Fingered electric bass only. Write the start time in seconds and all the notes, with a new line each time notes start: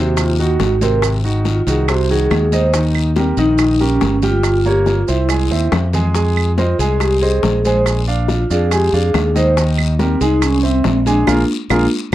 Already playing: D#2
0.60 G#1
1.67 C2
2.31 D#2
3.37 A#1
4.01 G1
5.09 C2
5.51 D#2
5.72 F2
6.79 C2
7.43 A#1
8.50 F2
8.93 F2
9.14 D#2
10.21 C2
10.85 A#1
11.27 A#1
11.70 A#1